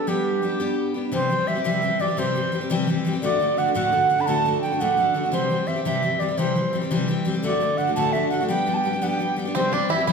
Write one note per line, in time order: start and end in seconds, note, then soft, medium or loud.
0.07 0.42 G3 medium
0.07 0.42 B3 medium
0.07 0.43 D4 medium
0.07 0.95 G4 medium
0.07 0.44 G4 medium
0.42 0.60 G3 medium
0.42 0.60 B3 medium
0.42 0.59 D4 medium
0.42 0.59 G4 medium
0.60 1.12 G3 medium
0.60 0.95 B3 medium
0.60 0.95 D4 medium
0.60 0.94 G4 medium
0.94 1.12 B3 soft
0.94 1.13 D4 medium
0.94 1.12 G4 medium
1.12 1.30 C3 medium
1.12 1.28 E3 medium
1.12 1.29 G3 medium
1.12 1.30 C4 medium
1.12 1.31 G4 medium
1.12 1.49 C5 loud
1.30 1.46 E3 medium
1.30 1.47 G3 medium
1.30 1.48 C4 medium
1.30 1.49 G4 medium
1.47 1.56 E3 medium
1.47 1.57 G3 medium
1.47 1.56 C4 medium
1.47 1.54 G4 medium
1.47 1.64 E5 loud
1.55 1.64 G3 soft
1.55 1.65 C4 medium
1.55 1.65 G4 medium
1.64 1.82 C3 medium
1.64 1.81 E3 medium
1.64 1.82 G3 medium
1.64 1.83 C4 medium
1.64 1.83 G4 medium
1.64 2.02 E5 loud
1.82 1.98 E3 medium
1.82 1.99 G3 medium
1.82 2.00 C4 medium
1.82 2.01 G4 medium
1.99 2.09 E3 medium
1.99 2.09 G3 medium
1.99 2.08 C4 medium
1.99 2.07 G4 medium
1.99 2.20 D5 medium
2.08 2.17 G3 soft
2.08 2.18 C4 soft
2.08 2.17 G4 medium
2.17 2.35 C3 medium
2.17 2.33 E3 medium
2.17 2.35 G3 medium
2.17 2.35 C4 medium
2.17 2.36 G4 medium
2.17 2.57 C5 medium
2.35 2.51 E3 medium
2.35 2.52 G3 medium
2.35 2.53 C4 medium
2.35 2.54 G4 medium
2.52 2.61 E3 medium
2.52 2.62 G3 medium
2.52 2.62 C4 medium
2.52 2.60 G4 medium
2.61 2.70 G3 soft
2.61 2.70 C4 medium
2.61 2.70 G4 medium
2.70 2.87 C3 medium
2.70 2.86 E3 loud
2.70 2.87 G3 loud
2.70 2.88 C4 medium
2.70 2.89 G4 medium
2.87 3.04 E3 medium
2.87 3.05 G3 medium
2.87 3.06 C4 medium
2.87 3.06 G4 medium
3.05 3.14 E3 medium
3.05 3.14 G3 medium
3.05 3.14 C4 medium
3.05 3.12 G4 medium
3.13 3.23 G3 soft
3.13 3.23 C4 soft
3.13 3.22 G4 medium
3.22 3.40 D2 medium
3.22 3.40 A2 medium
3.22 3.38 D3 medium
3.22 3.40 A3 medium
3.22 3.40 D4 medium
3.22 3.41 F#4 medium
3.22 3.59 D5 loud
3.40 3.56 D3 medium
3.40 3.57 A3 medium
3.40 3.58 D4 medium
3.40 3.59 F#4 medium
3.57 3.66 D3 medium
3.57 3.67 A3 medium
3.57 3.66 D4 medium
3.57 3.65 F#4 medium
3.57 3.74 F#5 medium
3.66 3.74 D3 soft
3.66 3.75 A3 soft
3.66 3.75 D4 soft
3.66 3.75 F#4 soft
3.75 3.92 D2 medium
3.75 3.93 A2 medium
3.75 3.91 D3 medium
3.75 3.92 A3 medium
3.75 3.93 D4 medium
3.75 3.93 F#4 medium
3.75 4.22 F#5 loud
3.92 4.08 D3 medium
3.92 4.09 A3 medium
3.92 4.10 D4 medium
3.92 4.11 F#4 medium
4.09 4.19 D3 medium
4.09 4.19 A3 medium
4.09 4.18 D4 medium
4.09 4.17 F#4 medium
4.18 4.27 D3 soft
4.18 4.27 A3 soft
4.18 4.27 D4 medium
4.18 4.27 F#4 medium
4.18 4.28 B5 medium
4.26 4.45 D2 medium
4.26 4.45 A2 medium
4.26 4.44 D3 medium
4.26 4.45 A3 medium
4.26 4.46 D4 medium
4.26 4.46 F#4 medium
4.26 4.61 A5 loud
4.45 4.62 D3 medium
4.45 4.63 A3 medium
4.45 4.64 D4 medium
4.45 4.64 F#4 medium
4.61 4.72 D3 medium
4.61 4.72 A3 medium
4.61 4.71 D4 medium
4.61 4.81 G5 medium
4.66 4.70 F#4 medium
4.71 4.80 D3 soft
4.71 4.80 A3 soft
4.71 4.81 D4 soft
4.71 4.80 F#4 soft
4.80 4.98 D2 medium
4.80 4.98 A2 medium
4.80 4.96 D3 medium
4.80 4.97 A3 medium
4.80 4.98 D4 medium
4.80 4.99 F#4 medium
4.80 5.32 F#5 loud
4.97 5.13 D3 medium
4.97 5.14 A3 medium
4.97 5.15 D4 medium
4.97 5.16 F#4 medium
5.14 5.24 D3 medium
5.14 5.24 A3 medium
5.14 5.24 D4 medium
5.14 5.22 F#4 medium
5.23 5.32 D3 soft
5.23 5.33 A3 soft
5.23 5.33 D4 soft
5.23 5.33 F#4 soft
5.32 5.50 C3 medium
5.32 5.48 E3 medium
5.32 5.49 G3 medium
5.32 5.50 C4 medium
5.32 5.51 G4 medium
5.32 5.69 C5 medium
5.49 5.65 E3 medium
5.49 5.66 G3 medium
5.49 5.67 C4 medium
5.49 5.68 G4 medium
5.67 5.76 E3 medium
5.67 5.77 G3 medium
5.67 5.76 C4 medium
5.67 5.75 G4 medium
5.67 5.83 E5 medium
5.76 5.85 G3 soft
5.76 5.85 C4 soft
5.76 5.85 G4 medium
5.84 6.03 C3 medium
5.84 6.01 E3 medium
5.84 6.02 G3 medium
5.84 6.03 C4 medium
5.84 6.04 G4 medium
5.84 6.21 E5 loud
6.03 6.19 E3 medium
6.03 6.20 G3 medium
6.03 6.21 C4 medium
6.03 6.22 G4 medium
6.19 6.29 E3 medium
6.19 6.30 G3 medium
6.19 6.29 C4 medium
6.19 6.27 G4 medium
6.19 6.31 D5 medium
6.28 6.37 G3 soft
6.28 6.38 C4 soft
6.28 6.38 G4 medium
6.28 6.39 D5 medium
6.37 6.55 C3 medium
6.37 6.54 E3 medium
6.37 6.55 G3 medium
6.37 6.56 C4 medium
6.37 6.56 G4 medium
6.37 6.78 C5 medium
6.55 6.72 E3 medium
6.55 6.73 G3 medium
6.55 6.74 C4 medium
6.55 6.75 G4 medium
6.73 6.82 E3 medium
6.73 6.82 G3 medium
6.73 6.82 C4 medium
6.73 6.80 G4 medium
6.81 6.90 G3 soft
6.81 6.91 C4 medium
6.81 6.91 G4 medium
6.91 7.08 C3 medium
6.91 7.07 E3 medium
6.91 7.08 G3 medium
6.91 7.08 C4 medium
6.91 7.09 G4 loud
7.08 7.24 E3 medium
7.08 7.24 G3 medium
7.08 7.25 C4 medium
7.08 7.26 G4 medium
7.25 7.34 E3 medium
7.25 7.35 G3 medium
7.25 7.34 C4 medium
7.25 7.33 G4 medium
7.34 7.44 G3 soft
7.34 7.44 C4 medium
7.34 7.43 G4 medium
7.43 7.61 D2 medium
7.43 7.61 A2 medium
7.43 7.59 D3 medium
7.43 7.60 A3 medium
7.43 7.61 D4 medium
7.43 7.62 F#4 medium
7.43 7.79 D5 loud
7.61 7.77 D3 medium
7.61 7.78 A3 medium
7.61 7.79 D4 medium
7.61 7.80 F#4 medium
7.77 7.87 D3 medium
7.77 7.88 A3 medium
7.77 7.87 D4 medium
7.77 7.86 F#4 medium
7.77 7.94 F#5 loud
7.87 7.96 D3 soft
7.87 7.96 A3 soft
7.87 7.96 D4 soft
7.87 7.96 F#4 medium
7.95 8.14 D2 medium
7.95 8.14 A2 medium
7.95 8.12 D3 medium
7.95 8.13 A3 medium
7.95 8.14 D4 medium
7.95 8.15 F#4 medium
7.95 8.14 A5 loud
8.12 8.29 D3 medium
8.12 8.31 A3 medium
8.12 8.31 D4 medium
8.12 8.33 F#4 medium
8.12 8.29 E5 loud
8.30 8.40 D3 medium
8.30 8.41 A3 medium
8.30 8.41 D4 medium
8.30 8.39 F#4 medium
8.30 8.47 F#5 medium
8.40 8.48 D3 soft
8.40 8.49 A3 soft
8.40 8.49 D4 soft
8.40 8.49 F#4 medium
8.48 8.65 G3 medium
8.48 8.66 B3 medium
8.48 8.67 D4 medium
8.48 8.68 G4 medium
8.48 8.75 G5 loud
8.66 8.82 G3 medium
8.66 8.84 B3 medium
8.66 8.85 D4 medium
8.66 8.86 G4 medium
8.74 9.04 G5 medium
8.74 8.77 A5 medium
8.84 8.93 G3 medium
8.84 8.94 B3 medium
8.84 8.93 D4 medium
8.84 8.92 G4 medium
8.93 9.01 B3 soft
8.93 9.02 D4 soft
8.93 9.02 G4 soft
9.02 9.18 G3 medium
9.02 9.19 B3 medium
9.02 9.20 D4 medium
9.02 9.20 G4 medium
9.02 9.08 F#5 medium
9.06 9.36 G5 loud
9.19 9.35 G3 soft
9.19 9.37 B3 medium
9.19 9.37 D4 medium
9.19 9.38 G4 medium
9.36 9.46 G3 medium
9.36 9.46 B3 medium
9.36 9.46 D4 medium
9.36 9.44 G4 medium
9.45 9.55 B3 soft
9.45 9.55 D4 medium
9.45 9.54 G4 medium
9.55 9.72 C3 medium
9.55 9.70 E3 medium
9.55 9.72 G3 medium
9.55 9.71 C4 medium
9.55 9.73 C4 medium
9.55 9.73 G4 medium
9.55 9.75 C5 loud
9.72 9.88 E3 medium
9.72 9.89 G3 medium
9.72 9.90 C4 medium
9.72 9.89 D4 medium
9.72 9.91 G4 medium
9.72 9.91 D5 medium
9.89 9.98 E3 medium
9.89 9.99 G3 medium
9.89 9.99 C4 medium
9.89 10.06 E4 medium
9.89 9.97 G4 medium
9.89 10.08 E5 medium
9.98 10.07 G3 soft
9.98 10.08 C4 medium
9.98 10.07 G4 medium
10.07 10.12 C3 medium
10.07 10.12 E3 medium
10.07 10.12 G3 medium
10.07 10.12 C4 medium
10.07 10.12 E4 medium
10.07 10.12 G4 medium
10.07 10.12 E5 loud